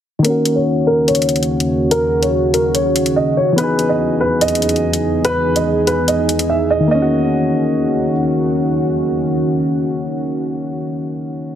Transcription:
0.19 D#3 A#3
0.24 D#2 C#3 C#4 F#4 A#4, closed hi-hat
0.30 F#4
0.45 closed hi-hat
0.56 C#5
0.87 A#4
1.08 C#5, closed hi-hat
1.15 closed hi-hat
1.22 closed hi-hat
1.29 closed hi-hat
1.36 closed hi-hat
1.43 closed hi-hat
1.60 closed hi-hat
1.91 A#4, closed hi-hat
2.23 C#5, closed hi-hat
2.54 A#4, closed hi-hat
2.75 C#5, closed hi-hat
2.96 closed hi-hat
3.06 closed hi-hat
3.16 D#5
3.37 C#5
3.53 E3 B3
3.58 E2 D#4 G#4 B4, closed hi-hat
3.64 G#4
3.79 closed hi-hat
3.89 D#5
4.21 B4
4.41 D#5, closed hi-hat
4.48 closed hi-hat
4.55 closed hi-hat
4.62 closed hi-hat
4.69 closed hi-hat
4.76 closed hi-hat
4.93 closed hi-hat
5.25 B4, closed hi-hat
5.56 D#5, closed hi-hat
5.87 B4, closed hi-hat
6.08 D#5, closed hi-hat
6.29 closed hi-hat
6.39 closed hi-hat
6.49 E5
6.70 D#5
6.80 D#3
6.88 D#3 A#3 C#4 F#4 D#5
6.95 C#4
7.02 F#4

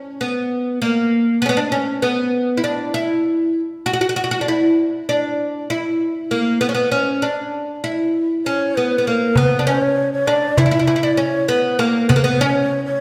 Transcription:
Already playing: C#4
0.21 B3
0.82 A#3
1.42 B3 C#4
1.49 B3
1.57 D4
1.72 C#4
2.02 B3
2.57 E4
2.64 D4
2.94 E4
3.86 F#4
3.93 F#4
4.01 F#4
4.09 F#4
4.16 F#4
4.24 F#4
4.31 F#4
4.41 D4
4.48 E4
5.09 D4
5.70 E4
6.31 A#3
6.61 B3
6.69 C#4
6.75 B3
6.91 C#4
7.22 D4
7.84 E4
8.46 C#4 C#5
8.76 B3 B4
8.98 B3
9.06 A#3 A#4
9.36 B3 B4, darbuka dum
9.59 D4
9.67 C#4 C#5, darbuka ka
9.81 darbuka ka
10.13 C#5
10.27 D4 D5, darbuka tek
10.57 E4 E5, darbuka dum
10.66 E4
10.71 E4
10.79 E4
10.87 E4, darbuka tek
10.96 E4
11.03 E4 D5
11.17 C#4 C#5
11.48 B3 B4, darbuka ka
11.79 A#3 A#4, darbuka tek
11.94 darbuka ka
12.09 B3 B4, darbuka dum
12.16 A#3
12.24 B3 B4
12.40 C#4 C#5
12.55 darbuka ka
12.86 C#5

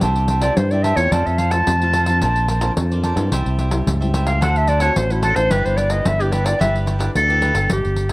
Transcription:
Already playing: G3 D4 E4
0.01 C2 C3 D4 G4 C5 E5, pandeiro
0.16 pandeiro
0.28 D4 G4 C5 E5, pandeiro
0.41 G3 D4 E4 G4 C5 D5 E5, pandeiro
0.57 G2 G3 C5, pandeiro
0.71 G3 D4 E4 G4 C5 D5 E5, pandeiro
0.83 D4 G4 C5 E5, pandeiro
0.96 E2 A3 C4 F4 C5 C#5, pandeiro
1.12 F2 F3 F4 A4 C5 D5 F5, pandeiro
1.26 F2 E5, pandeiro
1.38 F4 A4 C5 F5, pandeiro
1.51 A3 C4 F4 A5, pandeiro
1.67 F2 C3, pandeiro
1.82 A3 C4 F4 A4 C5 F5, pandeiro
1.93 F4 A4 C5 F5, pandeiro
2.06 F3 C4 D4 A4 C5 F5, pandeiro
2.21 A#1 A#2 D4 A#4 C5 D5, pandeiro
2.36 pandeiro
2.48 D4 A#4 C5 D5, pandeiro
2.61 F3 C4 D4 A#4 C5 D5, pandeiro
2.77 F2 F3, pandeiro
2.91 F3 C4 D4 A#4 C5 D5, pandeiro
3.03 D4 A#4 C5 D5, pandeiro
3.16 G2 G3 C4 E4 A#4 C5 D5, pandeiro
3.31 C2 C3 E4 G4 C5 E5, pandeiro
3.46 C2, pandeiro
3.58 E4 G4 C5 E5, pandeiro
3.71 G3 C4 E4, pandeiro
3.87 C#2 G2, pandeiro
4.01 G3 C4 E4 G4 C5 E5, pandeiro
4.14 E4 G4 C5 E5, pandeiro
4.26 G4 C5 E5 F5, pandeiro
4.41 D2 D3 A3 C4 D4 F#4 A4 C5 F#5, pandeiro
4.56 E5, pandeiro
4.67 D4 A4 C5 D5 F#5, pandeiro
4.80 A3 C4 D4 F#4 A4 C5 C#5 F#5, pandeiro
4.96 A1 A2 C5, pandeiro
5.10 A3 C4 E4 F#4 A4 C5 F#5, pandeiro
5.22 D4 A4 C5 F#5, pandeiro
5.35 A1 D4 E4 A4 B4 C5 F#5, pandeiro
5.51 G1 G3 E4 G4 B4 D5, pandeiro
5.65 G1 C5, pandeiro
5.77 E4 G4 B4 D5, pandeiro
5.90 D4 E4 B4 D#5, pandeiro
6.05 G1 D3 E5, pandeiro
6.20 D4 E4 G4 B4 D5, pandeiro
6.32 E4 G4 B4 D5, pandeiro
6.44 D4 E4 G4 B4 D5, pandeiro
6.59 G1 G3 D4 E4 G4 B4 D5 E5, pandeiro
6.76 pandeiro
6.86 E4 G4 B4 D5, pandeiro
6.99 D4 E4 G4 B4 D5, pandeiro
7.15 D2 D3 A4, pandeiro
7.28 D4 E4 G4 B4 D5, pandeiro
7.41 E4 G4 B4 D5, pandeiro
7.54 G1 B3 D4 G4 A4 B4 D5, pandeiro
7.70 G3 G4, pandeiro
7.85 G1, pandeiro
7.96 pandeiro
8.09 B3, pandeiro

